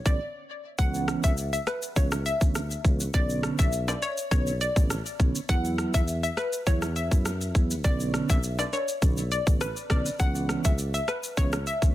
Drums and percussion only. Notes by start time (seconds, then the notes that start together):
0.06 kick, shaker
0.79 kick, shaker
0.94 shaker
1.08 cross-stick, shaker
1.23 kick, shaker
1.37 shaker
1.53 shaker
1.67 cross-stick, shaker
1.82 shaker
1.96 kick, shaker
2.11 cross-stick, shaker
2.26 shaker
2.41 kick, shaker
2.55 cross-stick, shaker
2.71 shaker
2.85 kick, shaker
3.00 shaker
3.14 kick, shaker
3.29 shaker
3.43 cross-stick, shaker
3.58 kick, shaker
3.72 shaker
3.88 high timbale, shaker
4.02 shaker
4.18 shaker
4.31 kick, shaker
4.47 shaker
4.61 shaker
4.76 kick, shaker
4.90 cross-stick, shaker
5.06 shaker
5.20 kick, shaker
5.35 shaker
5.49 kick, shaker
5.65 shaker
5.78 cross-stick, shaker
5.94 kick, shaker
6.08 shaker
6.23 shaker
6.37 cross-stick, shaker
6.53 shaker
6.67 kick, shaker
6.82 cross-stick, shaker
6.96 shaker
7.11 kick, shaker
7.25 cross-stick, shaker
7.41 shaker
7.55 kick, shaker
7.71 shaker
7.84 kick, shaker
8.00 shaker
8.14 cross-stick, shaker
8.29 kick, shaker
8.43 shaker
8.59 high timbale, shaker
8.73 high timbale, shaker
8.88 shaker
9.02 kick, shaker
9.17 shaker
9.31 shaker
9.47 kick, shaker
9.61 cross-stick, shaker
9.76 shaker
9.90 kick, cross-stick, shaker
10.06 shaker
10.20 kick, shaker
10.35 shaker
10.49 cross-stick, shaker
10.64 kick, shaker
10.78 shaker
10.94 shaker
11.08 cross-stick, shaker
11.23 shaker
11.37 kick, shaker
11.52 cross-stick, shaker
11.66 shaker
11.82 kick, shaker